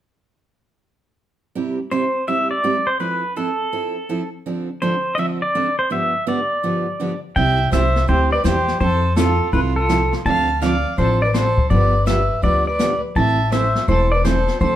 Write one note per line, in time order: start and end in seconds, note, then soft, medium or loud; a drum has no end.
1.55 1.77 C3 medium
1.55 1.77 G3 medium
1.55 1.77 C4 medium
1.55 1.78 E4 medium
1.55 1.78 G4 medium
1.91 2.03 C3 medium
1.91 2.03 G3 medium
1.91 2.03 C4 medium
1.91 2.03 E4 medium
1.91 2.04 G4 medium
1.91 2.29 C5 medium
2.27 2.50 C3 medium
2.27 2.50 G3 medium
2.27 2.50 C4 medium
2.27 2.50 E4 medium
2.27 2.50 G4 medium
2.27 2.50 E5 loud
2.51 2.88 D5 medium
2.64 2.75 C3 medium
2.64 2.76 G3 medium
2.64 2.76 C4 medium
2.64 2.76 E4 medium
2.64 2.76 G4 medium
2.87 3.00 C5 medium
3.00 3.22 F3 medium
3.00 3.22 C4 medium
3.00 3.23 E4 medium
3.00 3.23 A4 medium
3.00 3.38 B4 medium
3.36 3.48 F3 medium
3.36 3.48 C4 medium
3.36 3.48 E4 medium
3.36 4.29 A4 medium
3.36 3.49 A4 medium
3.72 3.95 F3 medium
3.72 3.95 C4 medium
3.72 3.95 E4 medium
3.72 3.95 A4 medium
4.09 4.21 F3 medium
4.09 4.21 C4 medium
4.09 4.21 E4 medium
4.09 4.21 A4 medium
4.46 4.68 D3 medium
4.46 4.68 F3 soft
4.46 4.68 C4 medium
4.46 4.68 D4 medium
4.46 4.68 A4 medium
4.82 4.93 D3 medium
4.82 4.93 F3 medium
4.82 4.94 C4 medium
4.82 4.94 D4 medium
4.82 4.94 A4 medium
4.82 5.16 C5 medium
5.15 5.40 D3 medium
5.15 5.40 F3 medium
5.15 5.40 C4 medium
5.15 5.40 D4 medium
5.15 5.40 A4 medium
5.15 5.18 D#5 medium
5.19 5.25 E5 medium
5.42 5.76 D5 medium
5.55 5.66 D3 medium
5.55 5.66 F3 medium
5.55 5.66 C4 medium
5.55 5.66 D4 medium
5.55 5.67 A4 medium
5.79 5.92 C5 medium
5.90 6.12 G2 medium
5.90 6.12 D3 medium
5.90 6.13 F3 medium
5.90 6.13 B3 medium
5.90 6.13 D4 medium
5.90 6.13 G4 medium
5.90 6.28 E5 loud
6.27 6.38 G2 medium
6.27 6.38 D3 medium
6.27 6.38 F3 medium
6.27 6.38 B3 medium
6.27 6.39 D4 medium
6.27 6.39 G4 medium
6.27 7.19 D5 medium
6.63 6.85 G2 medium
6.63 6.85 D3 medium
6.63 6.85 F3 medium
6.63 6.85 B3 medium
6.63 6.85 D4 medium
6.63 6.85 G4 medium
7.00 7.11 G2 medium
7.00 7.11 D3 medium
7.00 7.11 F3 medium
7.00 7.12 B3 medium
7.00 7.12 D4 medium
7.00 7.12 G4 medium
7.36 7.65 C2 medium
7.36 7.58 C3 medium
7.36 7.58 G3 medium
7.36 7.58 C4 medium
7.36 7.58 E4 medium
7.36 7.58 G4 medium
7.36 7.70 E5 medium
7.36 7.70 G5 loud
7.36 brush sweep medium
7.36 kick soft
7.72 8.03 C2 medium
7.72 7.83 C3 medium
7.72 7.84 G3 medium
7.72 7.84 C4 medium
7.72 7.84 E4 medium
7.72 7.84 G4 medium
7.72 8.06 C5 medium
7.72 8.10 E5 medium
7.72 snare medium
7.72 hi-hat pedal medium
7.96 snare soft
8.08 8.39 D2 medium
8.08 8.30 C3 medium
8.08 8.30 G3 medium
8.08 8.30 C4 medium
8.08 8.30 E4 medium
8.08 8.33 G4 medium
8.08 8.30 G4 medium
8.08 8.32 C5 medium
8.08 brush sweep soft
8.08 kick soft
8.32 8.47 B4 medium
8.32 8.45 D5 medium
8.44 8.75 E2 medium
8.44 8.56 C3 medium
8.44 8.56 G3 medium
8.44 8.56 C4 medium
8.44 8.56 E4 medium
8.44 8.56 G4 medium
8.44 8.81 G4 medium
8.44 8.79 C5 medium
8.44 snare medium
8.44 hi-hat pedal medium
8.68 snare soft
8.80 9.39 F2 medium
8.80 9.02 F3 medium
8.80 9.03 C4 medium
8.80 9.03 E4 medium
8.80 9.15 A4 medium
8.80 9.03 A4 medium
8.80 9.18 C5 medium
8.80 brush sweep soft
8.80 kick soft
9.16 9.28 F3 medium
9.16 9.28 C4 medium
9.16 9.28 E4 medium
9.16 9.51 F4 medium
9.16 9.54 A4 medium
9.16 9.29 A4 medium
9.16 snare medium
9.16 hi-hat pedal medium
9.53 10.11 C2 medium
9.53 9.75 F3 medium
9.53 9.75 C4 medium
9.53 9.75 E4 medium
9.53 9.73 F4 medium
9.53 9.75 A4 medium
9.53 9.59 B4 medium
9.53 brush sweep soft
9.53 kick soft
9.76 10.13 F4 medium
9.76 10.13 A4 medium
9.89 10.01 F3 medium
9.89 10.01 C4 medium
9.89 10.01 E4 medium
9.89 10.01 A4 medium
9.89 snare medium
9.89 hi-hat pedal medium
10.13 snare soft
10.26 10.84 D2 medium
10.26 10.47 D3 medium
10.26 10.48 F3 medium
10.26 10.48 C4 medium
10.26 10.48 D4 medium
10.26 10.48 A4 medium
10.26 10.60 F5 medium
10.26 10.63 A5 loud
10.26 brush sweep soft
10.26 kick soft
10.62 10.73 D3 medium
10.62 10.73 F3 medium
10.62 10.74 C4 medium
10.62 10.74 D4 medium
10.62 10.74 A4 medium
10.62 10.96 D5 medium
10.62 10.99 F5 medium
10.62 snare medium
10.62 hi-hat pedal medium
10.98 11.56 A1 medium
10.98 11.20 D3 medium
10.98 11.20 F3 medium
10.98 11.20 C4 medium
10.98 11.20 D4 medium
10.98 11.20 A4 medium
10.98 11.24 A4 medium
10.98 11.22 C5 medium
10.98 brush sweep soft
10.98 kick soft
11.22 11.34 B4 medium
11.22 11.35 D5 medium
11.34 11.46 D3 medium
11.34 11.46 F3 medium
11.34 11.46 C4 medium
11.34 11.46 D4 medium
11.34 11.68 A4 medium
11.34 11.46 A4 medium
11.34 11.72 C5 medium
11.34 snare medium
11.34 hi-hat pedal medium
11.58 kick medium
11.70 12.29 G1 medium
11.70 11.92 D3 medium
11.70 11.92 F3 medium
11.70 11.93 B3 medium
11.70 11.93 D4 medium
11.70 11.93 G4 medium
11.70 12.05 B4 medium
11.70 12.07 D5 medium
11.70 brush sweep soft
11.70 kick soft
12.06 12.18 D3 medium
12.06 12.18 F3 medium
12.06 12.18 B3 medium
12.06 12.18 D4 medium
12.06 12.18 G4 medium
12.06 12.41 B4 medium
12.06 12.43 E5 medium
12.06 snare medium
12.06 hi-hat pedal medium
12.42 13.01 D2 medium
12.42 12.64 D3 medium
12.42 12.65 F3 medium
12.42 12.65 B3 medium
12.42 12.65 D4 medium
12.42 12.65 G4 medium
12.42 12.65 B4 medium
12.42 12.66 D5 medium
12.42 brush sweep soft
12.42 kick soft
12.66 13.00 B4 medium
12.66 13.00 D5 medium
12.79 12.91 D3 medium
12.79 12.91 F3 medium
12.79 12.91 B3 medium
12.79 12.91 D4 medium
12.79 12.91 G4 medium
12.79 snare medium
12.79 hi-hat pedal medium
13.16 13.74 A1 medium
13.16 13.37 E3 medium
13.16 13.38 A3 medium
13.16 13.38 C4 medium
13.16 13.38 E4 medium
13.16 13.38 A4 medium
13.16 13.50 E5 medium
13.16 13.53 A5 loud
13.16 brush sweep soft
13.16 kick soft
13.52 13.63 E3 medium
13.52 13.63 A3 medium
13.52 13.64 C4 medium
13.52 13.64 E4 medium
13.52 13.64 A4 medium
13.52 13.86 C5 medium
13.52 13.90 E5 medium
13.52 snare medium
13.52 hi-hat pedal medium
13.75 snare soft
13.88 14.46 E1 medium
13.88 14.10 E3 medium
13.88 14.10 A3 medium
13.88 14.10 C4 medium
13.88 14.10 E4 medium
13.88 14.10 A4 medium
13.88 14.14 A4 medium
13.88 14.12 C5 medium
13.88 brush sweep soft
13.88 kick soft
14.12 14.25 B4 medium
14.12 14.25 D5 medium
14.24 14.36 E3 medium
14.24 14.36 A3 medium
14.24 14.36 C4 medium
14.24 14.36 E4 medium
14.24 14.59 A4 medium
14.24 14.36 A4 medium
14.24 14.60 C5 medium
14.24 snare medium
14.24 hi-hat pedal medium
14.48 snare soft
14.60 14.76 D2 medium
14.60 14.76 D3 soft
14.60 14.76 F3 medium
14.60 14.76 C4 medium
14.60 14.76 D4 medium
14.60 14.76 A4 medium
14.60 14.76 C5 medium
14.60 brush sweep medium
14.60 kick soft